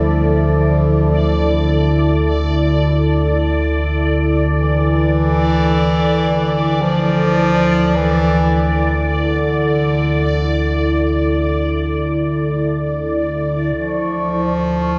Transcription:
Already playing: synth drone D2, bass clarinet F3, ambient pad E4 A4 D5, synth texture D5
4.54 bass clarinet E3
6.82 bass clarinet F3
7.96 bass clarinet E3
9.10 bass clarinet D3
13.77 synth drone D2 D3, bass clarinet F3, ambient pad E4, synth texture C#6
14.60 ambient pad A4

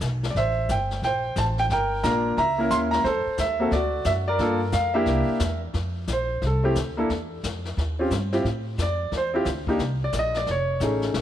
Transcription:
0.01 upright bass B1, kick, snare, hi-hat pedal
0.23 snare
0.31 grand piano D5
0.35 upright bass A1, grand piano C5 E5, brush sweep, kick, snare
0.69 upright bass G1, grand piano G5, kick, snare, hi-hat pedal
0.91 snare
1.02 upright bass A#1, grand piano C5 G5, brush sweep, kick, snare
1.36 upright bass A1, grand piano A5, kick, snare, hi-hat pedal
1.58 grand piano G5, snare
1.69 upright bass G1, grand piano A#4 G5, brush sweep, kick, snare
2.03 upright bass A#1, grand piano A#3 D4 F4 A#4 A#5, kick, snare, hi-hat pedal
2.37 upright bass C#2, grand piano E5 A#5, brush sweep, kick, snare
2.58 grand piano A#3 C#4 E4 A#4
2.70 upright bass D#2, grand piano C6, kick, snare, hi-hat pedal
2.91 grand piano A#5, snare
3.04 upright bass F2, grand piano A4 C5, brush sweep, kick, snare
3.26 muted upright bass stroke
3.38 upright bass D#2, grand piano E5, kick, snare, hi-hat pedal
3.60 grand piano A#3 C4 F#4 A4
3.71 upright bass D2, grand piano F#4 D5, brush sweep, kick, snare
4.04 upright bass F#2, grand piano E5, kick, snare, hi-hat pedal
4.28 grand piano A#4 D5
4.39 upright bass G2, grand piano A#3 D4 F4 A4, brush sweep, kick, snare
4.72 upright bass F2, grand piano F5, kick, snare, hi-hat pedal
4.94 grand piano A#3 D4 E4 G4 A#4 E5
5.06 upright bass C2, brush sweep, kick, snare
5.39 upright bass E2, kick, snare, hi-hat pedal
5.74 upright bass F2, brush sweep, kick, snare
6.07 upright bass A#1, kick, snare, hi-hat pedal
6.13 grand piano C5
6.42 upright bass C2, brush sweep, kick, snare
6.47 grand piano A4
6.63 grand piano A3 C4 E4 G4
6.75 upright bass D2, kick, snare, hi-hat pedal
6.97 grand piano A#3 D4 E4 A4
7.10 upright bass E2, brush sweep, kick, snare
7.43 upright bass F2, kick, snare, hi-hat pedal
7.65 snare
7.77 upright bass D#2, brush sweep, kick, snare
7.99 grand piano C4 C#4 F4 G4
8.10 upright bass G2, kick, snare, hi-hat pedal
8.32 grand piano C4 E4 F4 G4, snare
8.44 upright bass A2, brush sweep, kick, snare
8.78 upright bass F2, kick, snare, hi-hat pedal
8.82 grand piano D5
9.12 upright bass E2, brush sweep, kick, snare
9.17 grand piano C5
9.34 grand piano C4 E4 F4 G4
9.45 upright bass D2, kick, snare, hi-hat pedal
9.67 grand piano A#3 D4 D#4 G4, kick
9.79 upright bass C2, brush sweep, kick, snare
10.04 grand piano D5
10.12 upright bass A#1, grand piano D5, kick, snare, hi-hat pedal
10.19 grand piano D#5
10.34 grand piano D5, snare
10.47 upright bass F1, brush sweep, kick, snare
10.51 grand piano C#5
10.80 upright bass A1, grand piano A3 C#4 D#4 G#4, kick, snare, hi-hat pedal
11.02 snare
11.14 upright bass A#1, snare

